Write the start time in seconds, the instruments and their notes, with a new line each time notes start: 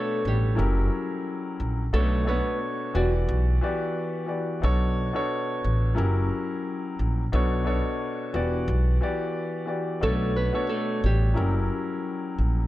Already playing: grand piano B2 B3 D4 A4 C#5, nylon-string guitar A3 A4
0.25 upright bass A1, nylon-string guitar G3 G4
0.55 upright bass F#1, grand piano F#3 C#4 E4 G4 A#4
1.60 upright bass A#1
1.93 upright bass B1, grand piano B2 B3 D4 A4 C#5, nylon-string guitar A3 A4
2.25 grand piano B2 B3 D4 A4 C#5, nylon-string guitar B4
2.29 nylon-string guitar B3
2.94 upright bass E1, grand piano E3 B3 F#4 G4 D5, nylon-string guitar F#3 F#4
3.29 upright bass B1
3.61 grand piano E3 B3 F#4 G4 D5
4.26 grand piano E3 B3 F#4 G4 D5
4.62 upright bass B1, grand piano B2 B3 D4 A4 C#5
5.13 grand piano B2 B3 D4 A4 C#5
5.64 upright bass A1
5.95 upright bass F#1, grand piano F#3 C#4 E4 G4 A#4
6.99 upright bass A#1
7.32 upright bass B1, grand piano B2 B3 D4 A4 C#5
7.64 grand piano B2 B3 D4 A4 C#5
8.33 upright bass E1, grand piano E3 B3 F#4 G4 D5
8.68 upright bass B1
9.01 grand piano E3 B3 F#4 G4 D5
9.66 grand piano E3 B3 F#4 G4 D5
10.01 upright bass B1, grand piano B2 B3 D4 A4 C#5, nylon-string guitar A3 A4
10.36 nylon-string guitar B3 B4
10.52 grand piano B2 B3 D4 A4 C#5
10.69 nylon-string guitar A3 A4
11.04 upright bass A1, nylon-string guitar G3 G4
11.34 upright bass F#1, grand piano F#3 C#4 E4 G4 A#4
12.39 upright bass A#1